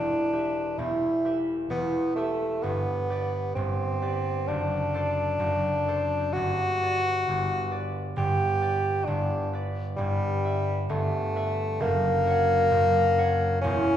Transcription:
0.00 0.77 E1 soft
0.00 0.78 E2 soft
0.00 0.80 D4 medium
0.00 0.32 G4 soft
0.00 0.32 B4 soft
0.00 0.33 E5 soft
0.33 1.24 G4 soft
0.33 1.24 B4 soft
0.33 1.24 E5 soft
0.78 1.69 E1 soft
0.78 1.69 E2 soft
0.78 1.44 E4 medium
1.25 2.15 G4 soft
1.25 2.16 B4 soft
1.25 2.16 E5 soft
1.70 2.67 E1 soft
1.70 2.67 E2 soft
1.70 2.14 B3 medium
2.16 2.64 A3 medium
2.16 3.09 G4 soft
2.16 3.09 B4 soft
2.16 2.67 E5 soft
2.62 3.55 G1 medium
2.62 3.55 G2 medium
2.62 3.54 B3 medium
3.10 4.00 G4 soft
3.10 4.01 B4 soft
3.10 4.01 D5 soft
3.55 4.51 G1 medium
3.55 4.51 G2 medium
3.55 4.49 C4 medium
4.02 4.51 G4 soft
4.02 4.51 B4 soft
4.02 4.94 D5 soft
4.48 5.38 F#1 medium
4.48 5.38 F#2 medium
4.48 6.34 D4 medium
4.94 5.87 A4 soft
4.94 5.87 C5 soft
4.94 5.88 D5 soft
5.39 6.39 F#1 soft
5.39 6.39 F#2 soft
5.88 6.39 A4 soft
5.88 6.39 C5 soft
5.88 6.82 D5 soft
6.33 7.27 G1 medium
6.33 7.27 G2 medium
6.33 7.91 F#4 loud
6.82 7.70 B4 soft
6.82 7.70 D5 soft
7.28 8.15 G1 medium
7.28 8.16 G2 medium
7.71 8.60 B4 soft
7.71 8.61 D5 soft
8.16 9.07 G1 medium
8.16 9.07 G2 medium
8.16 9.07 G4 medium
8.61 9.52 B4 soft
8.61 9.53 D5 medium
9.05 9.97 G1 medium
9.05 9.97 G2 medium
9.05 9.52 D4 medium
9.53 10.44 B4 medium
9.53 10.03 D5 medium
9.96 10.88 G1 medium
9.96 10.88 G2 medium
9.96 10.85 G3 medium
10.45 11.35 B4 soft
10.45 11.35 E5 medium
10.89 11.85 G1 medium
10.89 11.85 G2 medium
10.89 11.83 A3 medium
11.36 11.85 B4 soft
11.36 11.85 E5 medium
11.80 12.70 F#1 medium
11.80 12.70 F#2 medium
11.80 13.61 A#3 loud
12.24 13.17 A#4 medium
12.24 13.17 C#5 medium
12.30 13.18 F#5 medium
12.71 13.66 F#1 medium
12.71 13.66 F#2 medium
13.18 13.97 A#4 medium
13.18 13.97 C#5 medium
13.18 13.97 F#5 medium
13.61 13.97 E1 medium
13.61 13.97 E2 medium
13.61 13.97 C#4 loud

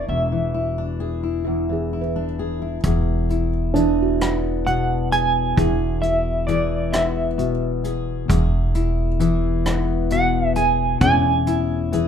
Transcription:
0.00 0.31 E3 medium
0.00 0.54 E4 soft
0.00 2.24 F#4 soft
0.00 0.81 G#4 medium
0.00 2.00 B4 soft
0.00 2.75 C#6 soft
0.08 2.79 E1 medium
0.08 1.46 E2 medium
0.08 2.34 E5 medium
0.32 1.68 E3 soft
0.54 1.22 E4 medium
0.78 2.15 D4 soft
1.00 2.38 G#4 medium
1.23 1.92 E4 soft
1.44 2.83 E2 medium
1.44 3.24 E4 soft
1.69 3.73 E3 soft
1.69 3.50 G#4 soft
1.93 2.61 E4 soft
2.01 3.76 B4 soft
2.16 2.78 D4 soft
2.39 2.79 G#4 medium
2.62 2.79 E4 soft
2.84 5.53 E1 medium
2.84 5.56 E2 medium
2.84 3.75 G#4 medium
2.84 kick medium
2.84 closed hi-hat medium
3.30 6.02 E4 soft
3.30 closed hi-hat soft
3.74 6.47 E3 medium
3.74 7.25 D4 medium
3.74 5.11 G#4 medium
3.74 closed hi-hat soft
4.02 7.51 F#4 soft
4.21 6.93 B3 soft
4.21 cross-stick medium
4.21 closed hi-hat medium
4.67 5.57 B2 medium
4.67 5.12 F#5 medium
4.67 closed hi-hat soft
5.12 5.57 G#4 medium
5.12 6.01 G#5 medium
5.12 closed hi-hat soft
5.56 8.25 E1 medium
5.56 8.28 E2 medium
5.56 9.07 E4 soft
5.56 6.48 G#4 medium
5.56 kick medium
5.56 closed hi-hat medium
6.02 8.74 E4 medium
6.02 6.49 E5 medium
6.02 closed hi-hat soft
6.47 9.19 E3 medium
6.47 7.84 G#4 medium
6.47 6.94 D5 medium
6.47 closed hi-hat soft
6.93 9.66 B3 medium
6.93 7.91 E5 medium
6.93 cross-stick medium
6.93 closed hi-hat medium
7.38 8.29 B2 medium
7.38 closed hi-hat soft
7.84 8.29 G#4 medium
7.84 closed hi-hat soft
8.28 10.98 E1 medium
8.28 11.00 E2 medium
8.28 9.20 G#4 medium
8.28 kick medium
8.28 closed hi-hat medium
8.75 11.47 E4 medium
8.75 closed hi-hat soft
9.20 11.91 E3 medium
9.20 10.56 G#4 medium
9.20 closed hi-hat medium
9.65 10.97 B3 medium
9.65 cross-stick medium
9.65 closed hi-hat medium
10.10 11.02 B2 medium
10.10 10.54 F#5 medium
10.10 closed hi-hat medium
10.55 11.02 G#4 medium
10.55 11.00 G#5 medium
10.55 closed hi-hat medium
11.01 12.08 E1 medium
11.01 12.08 E2 medium
11.01 12.08 C#4 medium
11.01 11.92 G#4 medium
11.01 12.08 G#5 medium
11.01 kick medium
11.01 closed hi-hat medium
11.47 12.08 E4 medium
11.47 closed hi-hat soft
11.92 12.08 E3 medium
11.92 12.08 G#4 medium
11.92 closed hi-hat medium

